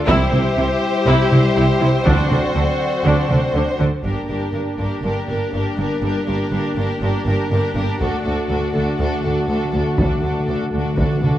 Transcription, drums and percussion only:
0.08 taiko
0.32 taiko mid
1.32 taiko mid
2.06 taiko
2.31 taiko mid
3.31 taiko mid
4.04 taiko
4.79 taiko
8.01 taiko
9.98 taiko
10.97 taiko
11.22 taiko mid

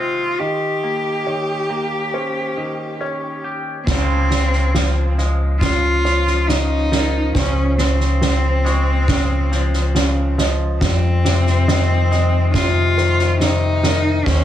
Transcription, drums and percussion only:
3.87 kick, snare, crash
4.31 snare
4.52 snare
4.74 snare
5.18 snare
5.61 kick, snare
6.05 snare
6.27 snare
6.49 snare
6.92 snare
7.35 kick, snare
7.78 snare
8.00 snare
8.21 snare
8.65 snare
9.08 kick, snare
9.52 snare
9.73 snare
9.95 snare
10.38 snare
10.81 kick, snare
11.25 snare
11.47 snare
11.68 snare
12.11 snare
12.54 kick, snare
12.97 snare
13.19 snare
13.40 snare
13.83 snare
14.26 kick, snare

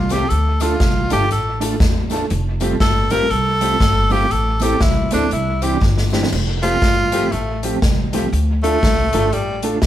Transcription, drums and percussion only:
0.09 closed hi-hat, tambourine
0.30 closed hi-hat
0.60 closed hi-hat, tambourine
0.80 kick, snare, closed hi-hat
1.10 closed hi-hat, tambourine
1.31 closed hi-hat
1.61 closed hi-hat, tambourine
1.80 kick, snare, closed hi-hat
2.10 closed hi-hat, tambourine
2.30 closed hi-hat
2.60 closed hi-hat, tambourine
2.80 kick, snare, closed hi-hat
3.10 closed hi-hat, tambourine
3.31 closed hi-hat
3.61 closed hi-hat, tambourine
3.80 kick, snare, closed hi-hat
4.10 open hi-hat, tambourine
4.31 closed hi-hat
4.60 closed hi-hat, tambourine
4.80 kick, snare, closed hi-hat
5.11 closed hi-hat, tambourine
5.31 closed hi-hat
5.62 closed hi-hat, tambourine
5.82 kick, snare
5.98 snare
6.10 snare, tambourine
6.23 snare
6.32 crash
6.62 closed hi-hat
6.82 kick, snare, closed hi-hat
7.12 closed hi-hat
7.32 closed hi-hat
7.63 closed hi-hat
7.82 kick, snare, closed hi-hat
8.13 closed hi-hat
8.33 closed hi-hat
8.64 closed hi-hat
8.83 kick, snare, closed hi-hat
9.13 closed hi-hat
9.33 closed hi-hat
9.62 closed hi-hat
9.82 kick, snare, closed hi-hat

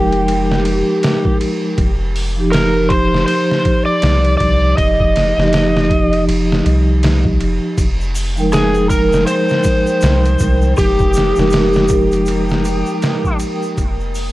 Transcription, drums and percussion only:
0.12 ride
0.28 ride
0.52 snare
0.65 ride
1.03 snare, ride
1.25 kick
1.41 ride
1.78 kick, ride
2.16 open hi-hat
2.53 snare, ride
2.90 kick, ride
3.14 snare
3.28 ride
3.51 snare
3.65 kick, ride
4.02 snare, ride
4.25 ride
4.40 kick, ride
4.78 kick, ride
5.00 kick
5.16 snare, ride
5.40 snare
5.53 snare, ride
5.77 snare
5.90 kick, ride
6.13 ride
6.29 ride
6.52 snare
6.66 ride
7.03 snare, ride
7.25 kick
7.41 ride
7.78 kick, ride, shaker
8.01 shaker
8.15 open hi-hat, shaker
8.37 shaker
8.52 snare, ride, shaker
8.74 shaker
8.90 kick, ride, shaker
9.12 snare, shaker
9.27 ride, shaker
9.49 snare, shaker
9.63 kick, ride, shaker
9.87 shaker
10.01 snare, ride, shaker
10.25 ride, shaker
10.39 kick, ride, shaker
10.62 shaker
10.77 kick, ride, shaker
10.99 kick, shaker
11.14 ride, shaker
11.18 snare
11.36 snare, shaker
11.50 snare, ride, shaker
11.73 snare, shaker
11.88 kick, ride, shaker
12.12 ride, shaker
12.26 ride, shaker
12.49 snare, shaker
12.65 ride, shaker
12.86 shaker
13.02 snare, ride, shaker
13.24 kick, shaker
13.40 ride, shaker
13.63 shaker
13.77 kick, ride, shaker
14.00 shaker
14.15 open hi-hat, shaker

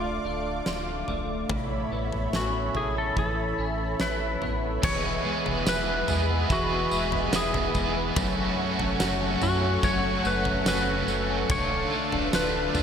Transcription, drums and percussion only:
0.66 snare
1.08 floor tom
1.49 kick, floor tom
2.12 floor tom
2.33 snare
2.75 floor tom
3.17 kick, floor tom
4.00 snare
4.42 floor tom
4.83 kick, floor tom, crash, tambourine
5.46 floor tom
5.66 snare, tambourine
6.08 floor tom, tambourine
6.50 kick, floor tom, tambourine
6.91 tambourine
7.12 floor tom
7.33 snare, tambourine
7.54 floor tom
7.74 kick, tambourine
8.16 kick, floor tom, tambourine
8.79 floor tom
9.00 snare, tambourine
9.42 floor tom, tambourine
9.83 kick, floor tom, tambourine
10.25 tambourine
10.45 floor tom
10.66 snare, tambourine
11.08 tambourine
11.50 kick, floor tom, tambourine
12.12 floor tom
12.33 snare, tambourine
12.75 floor tom, tambourine

